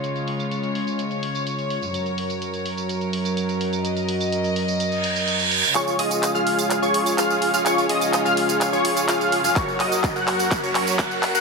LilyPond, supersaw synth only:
\new Staff \with { instrumentName = "Supersaw synth" } { \time 4/4 \key cis \mixolydian \tempo 4 = 126 r1 | r1 | r1 | <eis' gis' cis''>8 <eis' gis' dis''>8. <eis' gis' eis''>4 <eis' gis' cis''>8. <eis' gis' eis''>8. <eis' gis' eis''>16 |
<eis' gis' cis''>8 <eis' gis' dis''>8. <eis' gis' eis''>4 <eis' gis' cis''>8. <eis' gis' eis''>8. <eis' gis' eis''>16 | <fis' ais' cis''>8 <fis' ais' dis''>8. <fis' ais' fis''>4 <fis' ais' cis''>8. <fis' ais' fis''>8. <fis' ais' fis''>16 | }